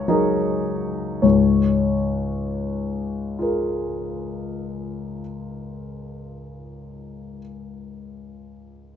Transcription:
grand piano
Already playing: C#5
0.08 F#3 D#4 G#4 A#4
1.22 C#2 G#2 C#5
3.39 F4 G#4 A#4

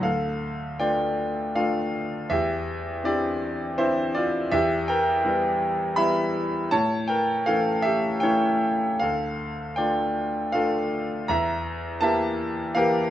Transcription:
grand piano
0.01 D2 A4 F5
0.79 A3 D4 F4 D5 G5
1.55 A3 D4 F4 A4 F5
2.30 E2 G4 E5
3.04 C4 D4 E4 G4 D5
3.78 C4 D4 E4 C5 E5
4.15 F4 D5
4.52 E2 G4 E5
4.88 A#4 G5
5.24 G3 B3 E4
5.96 G3 B3 E4 E5 B5
6.71 A2 C#5 A5
7.08 A#4 G5
7.46 E3 A3 C#4 A4 F5
7.82 G4 E5
8.20 A3 C#4 E4 C#5 G5
8.99 D2 A4 F5
9.76 A3 D4 F4 D5 G5
10.52 A3 D4 F4 A4 F5
11.28 E2 E5 A#5
12.01 A#3 E4 G4 E5 A5
12.75 E3 A#3 G4 A#4 F5

